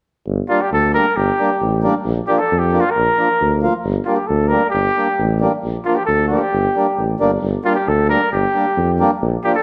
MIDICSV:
0, 0, Header, 1, 4, 480
1, 0, Start_track
1, 0, Key_signature, -2, "minor"
1, 0, Tempo, 447427
1, 286, Time_signature, 2, 2, 24, 8
1, 10328, End_track
2, 0, Start_track
2, 0, Title_t, "Cornet"
2, 0, Program_c, 0, 56
2, 523, Note_on_c, 0, 65, 76
2, 659, Note_on_c, 0, 67, 74
2, 675, Note_off_c, 0, 65, 0
2, 772, Note_off_c, 0, 67, 0
2, 783, Note_on_c, 0, 69, 78
2, 998, Note_off_c, 0, 69, 0
2, 1008, Note_on_c, 0, 70, 94
2, 1250, Note_on_c, 0, 67, 82
2, 1266, Note_off_c, 0, 70, 0
2, 1966, Note_off_c, 0, 67, 0
2, 2436, Note_on_c, 0, 67, 78
2, 2559, Note_on_c, 0, 69, 75
2, 2575, Note_off_c, 0, 67, 0
2, 2775, Note_on_c, 0, 67, 73
2, 2791, Note_off_c, 0, 69, 0
2, 3010, Note_on_c, 0, 65, 79
2, 3026, Note_off_c, 0, 67, 0
2, 3120, Note_on_c, 0, 70, 86
2, 3136, Note_off_c, 0, 65, 0
2, 3861, Note_off_c, 0, 70, 0
2, 4347, Note_on_c, 0, 65, 72
2, 4460, Note_on_c, 0, 67, 65
2, 4476, Note_off_c, 0, 65, 0
2, 4583, Note_on_c, 0, 69, 70
2, 4599, Note_off_c, 0, 67, 0
2, 4809, Note_on_c, 0, 70, 84
2, 4825, Note_off_c, 0, 69, 0
2, 5034, Note_off_c, 0, 70, 0
2, 5041, Note_on_c, 0, 67, 90
2, 5739, Note_off_c, 0, 67, 0
2, 6273, Note_on_c, 0, 65, 78
2, 6388, Note_on_c, 0, 67, 75
2, 6404, Note_off_c, 0, 65, 0
2, 6486, Note_off_c, 0, 67, 0
2, 6492, Note_on_c, 0, 69, 84
2, 6730, Note_off_c, 0, 69, 0
2, 6739, Note_on_c, 0, 67, 81
2, 7669, Note_off_c, 0, 67, 0
2, 8209, Note_on_c, 0, 65, 87
2, 8314, Note_off_c, 0, 65, 0
2, 8321, Note_on_c, 0, 67, 82
2, 8456, Note_on_c, 0, 69, 77
2, 8472, Note_off_c, 0, 67, 0
2, 8679, Note_off_c, 0, 69, 0
2, 8685, Note_on_c, 0, 70, 94
2, 8909, Note_off_c, 0, 70, 0
2, 8927, Note_on_c, 0, 67, 87
2, 9605, Note_off_c, 0, 67, 0
2, 10127, Note_on_c, 0, 67, 81
2, 10234, Note_off_c, 0, 67, 0
2, 10241, Note_on_c, 0, 69, 76
2, 10328, Note_off_c, 0, 69, 0
2, 10328, End_track
3, 0, Start_track
3, 0, Title_t, "Accordion"
3, 0, Program_c, 1, 21
3, 531, Note_on_c, 1, 58, 52
3, 532, Note_on_c, 1, 55, 56
3, 533, Note_on_c, 1, 62, 62
3, 648, Note_off_c, 1, 58, 0
3, 649, Note_off_c, 1, 55, 0
3, 649, Note_off_c, 1, 62, 0
3, 1022, Note_on_c, 1, 62, 66
3, 1024, Note_on_c, 1, 55, 72
3, 1025, Note_on_c, 1, 58, 58
3, 1134, Note_off_c, 1, 62, 0
3, 1135, Note_off_c, 1, 55, 0
3, 1135, Note_off_c, 1, 58, 0
3, 1500, Note_on_c, 1, 55, 67
3, 1500, Note_on_c, 1, 58, 54
3, 1500, Note_on_c, 1, 62, 60
3, 1612, Note_off_c, 1, 55, 0
3, 1612, Note_off_c, 1, 58, 0
3, 1612, Note_off_c, 1, 62, 0
3, 1967, Note_on_c, 1, 55, 76
3, 1969, Note_on_c, 1, 58, 74
3, 1972, Note_on_c, 1, 62, 88
3, 2085, Note_off_c, 1, 55, 0
3, 2086, Note_off_c, 1, 58, 0
3, 2088, Note_off_c, 1, 62, 0
3, 2455, Note_on_c, 1, 53, 65
3, 2455, Note_on_c, 1, 58, 54
3, 2457, Note_on_c, 1, 62, 63
3, 2569, Note_off_c, 1, 53, 0
3, 2569, Note_off_c, 1, 58, 0
3, 2570, Note_off_c, 1, 62, 0
3, 2925, Note_on_c, 1, 58, 64
3, 2928, Note_on_c, 1, 53, 64
3, 2929, Note_on_c, 1, 62, 72
3, 3044, Note_off_c, 1, 58, 0
3, 3045, Note_off_c, 1, 53, 0
3, 3045, Note_off_c, 1, 62, 0
3, 3411, Note_on_c, 1, 62, 60
3, 3412, Note_on_c, 1, 53, 64
3, 3414, Note_on_c, 1, 58, 50
3, 3527, Note_off_c, 1, 53, 0
3, 3527, Note_off_c, 1, 62, 0
3, 3528, Note_off_c, 1, 58, 0
3, 3890, Note_on_c, 1, 65, 76
3, 3891, Note_on_c, 1, 58, 70
3, 3892, Note_on_c, 1, 53, 70
3, 4006, Note_off_c, 1, 58, 0
3, 4006, Note_off_c, 1, 65, 0
3, 4007, Note_off_c, 1, 53, 0
3, 4366, Note_on_c, 1, 55, 52
3, 4369, Note_on_c, 1, 62, 63
3, 4371, Note_on_c, 1, 58, 57
3, 4484, Note_off_c, 1, 55, 0
3, 4485, Note_off_c, 1, 62, 0
3, 4486, Note_off_c, 1, 58, 0
3, 4842, Note_on_c, 1, 55, 63
3, 4848, Note_on_c, 1, 62, 61
3, 4849, Note_on_c, 1, 58, 55
3, 4962, Note_off_c, 1, 55, 0
3, 4965, Note_off_c, 1, 58, 0
3, 4965, Note_off_c, 1, 62, 0
3, 5328, Note_on_c, 1, 55, 62
3, 5330, Note_on_c, 1, 58, 52
3, 5332, Note_on_c, 1, 62, 65
3, 5445, Note_off_c, 1, 55, 0
3, 5446, Note_off_c, 1, 58, 0
3, 5447, Note_off_c, 1, 62, 0
3, 5802, Note_on_c, 1, 55, 78
3, 5804, Note_on_c, 1, 62, 76
3, 5806, Note_on_c, 1, 58, 70
3, 5922, Note_off_c, 1, 55, 0
3, 5923, Note_off_c, 1, 62, 0
3, 5924, Note_off_c, 1, 58, 0
3, 6290, Note_on_c, 1, 53, 56
3, 6291, Note_on_c, 1, 58, 53
3, 6294, Note_on_c, 1, 62, 65
3, 6406, Note_off_c, 1, 53, 0
3, 6407, Note_off_c, 1, 58, 0
3, 6408, Note_off_c, 1, 62, 0
3, 6767, Note_on_c, 1, 53, 64
3, 6769, Note_on_c, 1, 58, 58
3, 6771, Note_on_c, 1, 62, 67
3, 6885, Note_off_c, 1, 53, 0
3, 6886, Note_off_c, 1, 58, 0
3, 6887, Note_off_c, 1, 62, 0
3, 7250, Note_on_c, 1, 55, 52
3, 7250, Note_on_c, 1, 62, 65
3, 7254, Note_on_c, 1, 58, 58
3, 7367, Note_off_c, 1, 55, 0
3, 7367, Note_off_c, 1, 62, 0
3, 7369, Note_off_c, 1, 58, 0
3, 7724, Note_on_c, 1, 55, 77
3, 7727, Note_on_c, 1, 62, 83
3, 7728, Note_on_c, 1, 58, 59
3, 7844, Note_off_c, 1, 55, 0
3, 7846, Note_off_c, 1, 58, 0
3, 7846, Note_off_c, 1, 62, 0
3, 8206, Note_on_c, 1, 62, 73
3, 8207, Note_on_c, 1, 55, 63
3, 8208, Note_on_c, 1, 58, 60
3, 8326, Note_off_c, 1, 55, 0
3, 8326, Note_off_c, 1, 58, 0
3, 8326, Note_off_c, 1, 62, 0
3, 8687, Note_on_c, 1, 55, 68
3, 8690, Note_on_c, 1, 62, 69
3, 8691, Note_on_c, 1, 58, 62
3, 8807, Note_off_c, 1, 55, 0
3, 8808, Note_off_c, 1, 58, 0
3, 8808, Note_off_c, 1, 62, 0
3, 9170, Note_on_c, 1, 58, 52
3, 9171, Note_on_c, 1, 55, 62
3, 9173, Note_on_c, 1, 62, 66
3, 9289, Note_off_c, 1, 55, 0
3, 9289, Note_off_c, 1, 58, 0
3, 9290, Note_off_c, 1, 62, 0
3, 9651, Note_on_c, 1, 55, 93
3, 9652, Note_on_c, 1, 58, 71
3, 9655, Note_on_c, 1, 62, 87
3, 9769, Note_off_c, 1, 55, 0
3, 9770, Note_off_c, 1, 58, 0
3, 9771, Note_off_c, 1, 62, 0
3, 10137, Note_on_c, 1, 58, 59
3, 10138, Note_on_c, 1, 53, 64
3, 10142, Note_on_c, 1, 62, 61
3, 10253, Note_off_c, 1, 53, 0
3, 10253, Note_off_c, 1, 58, 0
3, 10255, Note_off_c, 1, 62, 0
3, 10328, End_track
4, 0, Start_track
4, 0, Title_t, "Tuba"
4, 0, Program_c, 2, 58
4, 283, Note_on_c, 2, 31, 82
4, 428, Note_off_c, 2, 31, 0
4, 768, Note_on_c, 2, 38, 79
4, 1055, Note_off_c, 2, 38, 0
4, 1246, Note_on_c, 2, 31, 85
4, 1389, Note_off_c, 2, 31, 0
4, 1728, Note_on_c, 2, 33, 76
4, 2014, Note_off_c, 2, 33, 0
4, 2203, Note_on_c, 2, 34, 89
4, 2347, Note_off_c, 2, 34, 0
4, 2696, Note_on_c, 2, 41, 78
4, 2980, Note_off_c, 2, 41, 0
4, 3177, Note_on_c, 2, 34, 81
4, 3316, Note_off_c, 2, 34, 0
4, 3656, Note_on_c, 2, 38, 82
4, 3940, Note_off_c, 2, 38, 0
4, 4123, Note_on_c, 2, 31, 87
4, 4267, Note_off_c, 2, 31, 0
4, 4605, Note_on_c, 2, 38, 84
4, 4892, Note_off_c, 2, 38, 0
4, 5085, Note_on_c, 2, 31, 87
4, 5228, Note_off_c, 2, 31, 0
4, 5562, Note_on_c, 2, 33, 94
4, 5850, Note_off_c, 2, 33, 0
4, 6038, Note_on_c, 2, 34, 78
4, 6183, Note_off_c, 2, 34, 0
4, 6520, Note_on_c, 2, 38, 82
4, 6809, Note_off_c, 2, 38, 0
4, 7008, Note_on_c, 2, 31, 88
4, 7151, Note_off_c, 2, 31, 0
4, 7486, Note_on_c, 2, 33, 68
4, 7702, Note_off_c, 2, 33, 0
4, 7719, Note_on_c, 2, 31, 70
4, 7937, Note_off_c, 2, 31, 0
4, 7962, Note_on_c, 2, 31, 88
4, 8107, Note_off_c, 2, 31, 0
4, 8442, Note_on_c, 2, 38, 91
4, 8731, Note_off_c, 2, 38, 0
4, 8921, Note_on_c, 2, 31, 87
4, 9067, Note_off_c, 2, 31, 0
4, 9404, Note_on_c, 2, 41, 83
4, 9694, Note_off_c, 2, 41, 0
4, 9889, Note_on_c, 2, 34, 95
4, 10033, Note_off_c, 2, 34, 0
4, 10328, End_track
0, 0, End_of_file